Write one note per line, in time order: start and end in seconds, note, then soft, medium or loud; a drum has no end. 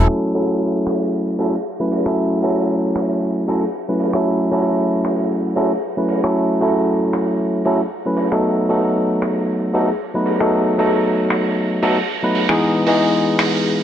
0.00 0.32 F#3 medium
0.00 0.32 A3 medium
0.00 0.32 C#4 medium
0.00 0.32 E4 medium
0.00 0.32 A4 loud
0.34 1.36 F#3 medium
0.34 1.36 A3 medium
0.34 1.37 C#4 medium
0.34 1.37 E4 medium
0.34 1.37 A4 medium
0.34 open hi-hat medium
0.87 finger snap soft
0.87 open hi-hat medium
1.39 1.53 F#3 medium
1.39 1.53 A3 medium
1.39 1.54 C#4 medium
1.39 1.54 E4 medium
1.39 1.54 A4 medium
1.39 open hi-hat loud
1.80 2.02 F#3 medium
1.80 2.02 A3 medium
1.80 2.02 C#4 medium
1.80 2.03 E4 medium
1.80 2.03 B4 medium
1.92 open hi-hat medium
2.05 2.40 F#3 medium
2.05 2.41 A3 medium
2.05 2.41 C#4 medium
2.05 2.41 E4 medium
2.05 2.41 A4 medium
2.05 finger snap soft
2.43 3.45 F#3 medium
2.43 3.45 A3 medium
2.43 3.45 C#4 medium
2.43 3.45 E4 medium
2.43 3.46 A4 medium
2.43 open hi-hat medium
2.95 finger snap medium
2.95 open hi-hat medium
3.48 3.62 F#3 medium
3.48 3.62 A3 medium
3.48 3.62 C#4 medium
3.48 3.62 E4 medium
3.48 3.63 A4 medium
3.48 open hi-hat medium
3.88 4.11 F#3 medium
3.88 4.11 A3 medium
3.88 4.11 C#4 medium
3.88 4.11 E4 medium
3.88 4.11 B4 medium
4.00 open hi-hat medium
4.13 4.49 F#3 medium
4.13 4.49 A3 medium
4.13 4.50 C#4 medium
4.13 4.50 E4 medium
4.13 4.50 A4 medium
4.13 finger snap soft
4.51 5.53 F#3 medium
4.51 5.53 A3 medium
4.51 5.54 C#4 medium
4.51 5.54 E4 medium
4.51 5.54 A4 medium
4.51 open hi-hat loud
5.05 finger snap medium
5.05 open hi-hat loud
5.56 5.71 F#3 medium
5.56 5.71 A3 medium
5.56 5.71 C#4 medium
5.56 5.71 E4 medium
5.56 5.71 A4 medium
5.56 open hi-hat loud
5.97 6.20 F#3 medium
5.97 6.20 A3 medium
5.97 6.20 C#4 medium
5.97 6.20 E4 medium
5.97 6.20 B4 medium
6.09 open hi-hat medium
6.23 6.58 F#3 medium
6.23 6.58 A3 medium
6.23 6.58 C#4 medium
6.23 6.58 E4 medium
6.23 6.59 A4 medium
6.23 finger snap medium
6.60 7.62 F#3 medium
6.60 7.62 A3 medium
6.60 7.63 C#4 medium
6.60 7.63 E4 medium
6.60 7.63 A4 medium
6.60 open hi-hat medium
7.13 finger snap medium
7.13 open hi-hat medium
7.65 7.79 F#3 medium
7.65 7.80 A3 medium
7.65 7.80 C#4 medium
7.65 7.80 E4 medium
7.65 7.80 A4 medium
7.65 open hi-hat medium
8.05 8.28 F#3 medium
8.05 8.28 A3 medium
8.05 8.29 C#4 medium
8.05 8.29 E4 medium
8.05 8.29 B4 medium
8.17 open hi-hat medium
8.32 8.67 F#3 medium
8.32 8.67 A3 medium
8.32 8.67 B3 medium
8.32 8.67 D#4 medium
8.32 8.67 A4 medium
8.32 finger snap medium
8.69 9.71 F#3 medium
8.69 9.71 A3 medium
8.69 9.71 B3 medium
8.69 9.71 D#4 medium
8.69 9.72 A4 medium
8.69 open hi-hat medium
9.22 finger snap medium
9.22 open hi-hat medium
9.74 9.88 F#3 medium
9.74 9.88 A3 medium
9.74 9.88 B3 medium
9.74 9.88 D#4 medium
9.74 9.89 A4 medium
9.74 open hi-hat medium
10.14 10.37 F#3 medium
10.14 10.37 A3 medium
10.14 10.37 B3 medium
10.14 10.37 D#4 medium
10.14 10.37 B4 medium
10.26 open hi-hat medium
10.40 10.75 F#3 medium
10.40 10.75 A3 medium
10.40 10.75 B3 medium
10.40 10.76 D#4 medium
10.40 10.76 A4 medium
10.40 finger snap medium
10.78 11.80 F#3 medium
10.78 11.80 A3 medium
10.78 11.80 B3 medium
10.78 11.80 D#4 medium
10.78 11.80 A4 medium
10.78 open hi-hat medium
11.30 finger snap medium
11.30 open hi-hat medium
11.82 11.97 F#3 medium
11.82 11.97 A3 medium
11.82 11.97 B3 medium
11.82 11.97 D#4 medium
11.82 11.97 A4 medium
11.82 open hi-hat loud
12.23 12.45 F#3 medium
12.23 12.46 A3 medium
12.23 12.46 B3 medium
12.23 12.46 D#4 medium
12.23 12.46 B4 medium
12.35 open hi-hat medium
12.49 12.84 E3 medium
12.49 12.84 G#3 medium
12.49 12.84 B3 medium
12.49 12.84 D#4 medium
12.49 12.84 G#4 medium
12.49 finger snap medium
12.86 13.83 E3 medium
12.86 13.83 G#3 medium
12.86 13.83 B3 medium
12.86 13.83 D#4 medium
12.86 13.83 G#4 medium
12.86 open hi-hat medium
13.39 finger snap medium
13.39 open hi-hat medium